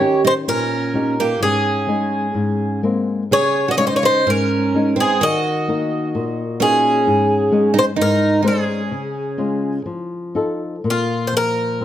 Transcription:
Already playing: nylon-string guitar D#3, twelve-string acoustic guitar G4 C#5
0.00 nylon-string guitar C#4 D#4 G4
0.25 twelve-string acoustic guitar D#4 C5
0.48 nylon-string guitar A#2, twelve-string acoustic guitar C#4 A#4
0.94 nylon-string guitar C#4 D#4 G4
1.20 twelve-string acoustic guitar A#3 G4
1.40 nylon-string guitar G#2, twelve-string acoustic guitar C#4 G#4
1.87 nylon-string guitar G#3 C#4 D#4
2.34 nylon-string guitar G#2
2.83 nylon-string guitar G#3 A#3 C4
3.31 nylon-string guitar C#3, twelve-string acoustic guitar G#4 C#5
3.68 twelve-string acoustic guitar F#4 D#5
3.77 nylon-string guitar G#3 C#4 D#4, twelve-string acoustic guitar F4 C#5
3.87 twelve-string acoustic guitar D#4 C5
3.96 twelve-string acoustic guitar F4 C#5
4.03 twelve-string acoustic guitar D#4 C5
4.26 nylon-string guitar G#2, twelve-string acoustic guitar C#4 A#4
4.74 nylon-string guitar G#3 C#4 D#4
4.96 twelve-string acoustic guitar C4
5.00 twelve-string acoustic guitar G#4
5.21 nylon-string guitar D#3, twelve-string acoustic guitar F#4 D#5
5.68 nylon-string guitar A#3 D#4 F#4
6.15 nylon-string guitar A#2
6.60 nylon-string guitar A#3 D#4 F#4, twelve-string acoustic guitar C#4 G#4
7.07 nylon-string guitar G#2
7.51 nylon-string guitar G#3 C#4 D#4
7.74 twelve-string acoustic guitar D#4
7.79 twelve-string acoustic guitar C5
7.96 nylon-string guitar G#2, twelve-string acoustic guitar D#4
8.01 twelve-string acoustic guitar A#4
8.43 nylon-string guitar G#3 D#4 C5, twelve-string acoustic guitar C#4
8.48 twelve-string acoustic guitar G#4
8.91 nylon-string guitar C#3
9.38 nylon-string guitar G#3 C#4 F4
9.86 nylon-string guitar F3
10.35 nylon-string guitar D#4 F4 A4
10.84 nylon-string guitar A#2
10.90 twelve-string acoustic guitar F4
11.27 twelve-string acoustic guitar C5
11.33 nylon-string guitar F3
11.37 twelve-string acoustic guitar A#4
11.81 nylon-string guitar C4

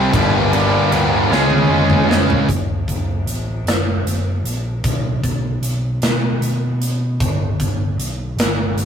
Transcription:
Already playing: distorted electric guitar C3 G3 C4 E4 G4 C5
0.13 picked electric bass G1, distorted electric guitar G2 D3 G3 A#3 D4 G4, kick, ride
0.53 distorted electric guitar G2 D3 G3, ride
0.92 picked electric bass D1, distorted electric guitar G2 D3 G3, ride
1.31 picked electric bass C#2, distorted electric guitar C#3 G#3 C#4 F4, snare
1.35 distorted electric guitar G#4
1.50 high tom
1.69 picked electric bass F1, distorted electric guitar C#3 G#3 C#4
1.90 mid tom
2.09 distorted electric guitar C#3 G#3 C#4, snare
2.30 floor tom
2.49 picked electric bass F#1, kick, closed hi-hat
2.88 picked electric bass F#1, kick, closed hi-hat
3.25 picked electric bass A1, closed hi-hat
3.65 picked electric bass F#1, snare, closed hi-hat
4.05 picked electric bass F#1, closed hi-hat
4.44 picked electric bass A#1, closed hi-hat
4.84 picked electric bass B1, kick, closed hi-hat
5.23 picked electric bass B1, kick, closed hi-hat
5.63 picked electric bass B1, closed hi-hat
6.02 picked electric bass B2, snare, closed hi-hat
6.41 picked electric bass B2, closed hi-hat
6.82 closed hi-hat
7.20 picked electric bass G1, kick, closed hi-hat
7.59 picked electric bass G1, kick, closed hi-hat
7.97 picked electric bass B1, closed hi-hat
8.37 picked electric bass G1, snare, closed hi-hat
8.76 picked electric bass G1, closed hi-hat

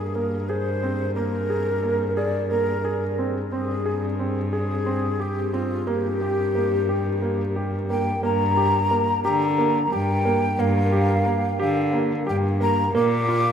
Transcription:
Already playing: cello G2, flute G#4
0.15 grand piano A#3, flute A#4
0.49 grand piano G#4, flute C5
0.83 grand piano C4
1.15 grand piano A#3, flute A#4
1.50 grand piano G#4
1.83 grand piano A#3
2.16 grand piano G#4, flute D5
2.50 grand piano A#3, flute A#4
2.85 grand piano G#4
3.18 grand piano C4
3.51 cello G2, grand piano C4, flute G#4
3.86 grand piano G#4
4.19 grand piano C4
4.53 grand piano G#4, flute G#4
4.86 grand piano C4
5.20 grand piano G4, flute G4
5.53 grand piano C4, flute F4
5.87 cello G2, grand piano A#3, flute G4
6.21 grand piano G4
6.55 grand piano A#3
6.89 grand piano G4
7.22 grand piano A#3
7.56 grand piano G4
7.90 grand piano A#3, flute G5
8.23 cello G2, grand piano A#3, flute A#5
8.57 grand piano G4
8.91 grand piano A#3
9.24 cello D3, grand piano G4, flute A#5
9.58 grand piano A#3
9.92 cello G2, grand piano G4, flute G5
10.25 grand piano A#3
10.59 cello G2, grand piano A#3, flute F5
10.92 grand piano G4
11.26 grand piano A#3
11.60 cello D3, grand piano G4, flute F5
11.93 grand piano A#3
12.27 cello G2, grand piano G4, flute G5
12.61 grand piano A#3, flute A#5
12.94 cello A#2, grand piano A#3, flute D6
13.28 grand piano F4

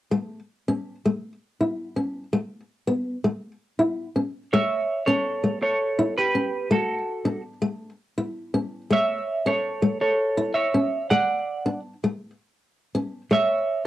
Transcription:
0.12 steel-string acoustic guitar A3
0.68 steel-string acoustic guitar C#4
1.06 steel-string acoustic guitar A3
1.61 steel-string acoustic guitar E4
1.96 steel-string acoustic guitar C#4
2.33 steel-string acoustic guitar A3
2.87 steel-string acoustic guitar B3
3.24 steel-string acoustic guitar A3
3.79 steel-string acoustic guitar E4
4.16 steel-string acoustic guitar C#4
4.53 steel-string acoustic guitar A3, clean electric guitar C#5 E5
5.06 steel-string acoustic guitar C#4, clean electric guitar A4 C#5
5.44 steel-string acoustic guitar A3
5.62 clean electric guitar A4 C#5
5.99 steel-string acoustic guitar E4
6.18 clean electric guitar G4 B4
6.35 steel-string acoustic guitar C#4
6.71 steel-string acoustic guitar A3, clean electric guitar F#4 A4
7.25 steel-string acoustic guitar D4
7.62 steel-string acoustic guitar A3
8.18 steel-string acoustic guitar E4
8.54 steel-string acoustic guitar C#4
8.91 steel-string acoustic guitar A3, clean electric guitar C#5 E5
9.46 steel-string acoustic guitar C#4, clean electric guitar A4 C#5
9.82 steel-string acoustic guitar A3
10.01 clean electric guitar A4 C#5
10.37 steel-string acoustic guitar E4
10.54 clean electric guitar C#5 E5
10.74 steel-string acoustic guitar C#4
11.10 steel-string acoustic guitar A3, clean electric guitar D5 F#5
11.66 steel-string acoustic guitar D4
12.04 steel-string acoustic guitar A3
12.95 steel-string acoustic guitar C#4
13.31 steel-string acoustic guitar A3, clean electric guitar C#5 E5

